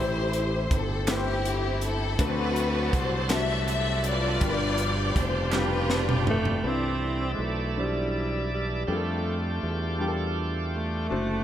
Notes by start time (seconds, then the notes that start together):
Already playing: A1 A2 A3 E4 G4 C5
0.00 C5
0.33 closed hi-hat
0.71 G1, kick, closed hi-hat
0.76 A4
1.07 A3 E4 G4 B4, snare, clap, closed hi-hat
1.11 C4 G4
1.17 C5
1.45 closed hi-hat
1.82 closed hi-hat
1.87 A4
2.18 D2 D3 F#3 A3 C4 D4 F#4 A4 B4, kick, closed hi-hat
2.24 C4 B4
2.56 closed hi-hat
2.93 C2 C5, kick, closed hi-hat
3.29 A3 D4 F#4 A4 E5, snare, clap, closed hi-hat
3.68 E5, closed hi-hat
4.04 F4 B4 D5, closed hi-hat
4.40 G1 G2 B2 F3 G3 D4 F4 F#4 A#4, kick, closed hi-hat
4.49 G4 B4
4.78 closed hi-hat
5.16 F1, kick, closed hi-hat
5.20 C5
5.52 G3 D4 F4 G4, snare, clap
5.56 F4 B4
5.90 snare
6.09 mid tom
6.27 A3, floor tom
6.45 floor tom
6.63 C2 E3 C4 D4 E4 B4 C5 D5
6.67 C4
7.34 G#3
7.39 B1 A3
7.75 B2 D4 E4 C5
7.79 G3
8.53 G3
8.87 F2 G3 A3 D4 F4 G4 G#4
8.97 A4
9.63 E2
9.98 G3 D4 F4 G4
10.08 A4
10.76 A3
11.09 F#1 C3 D3 A3 D4 F#4 C5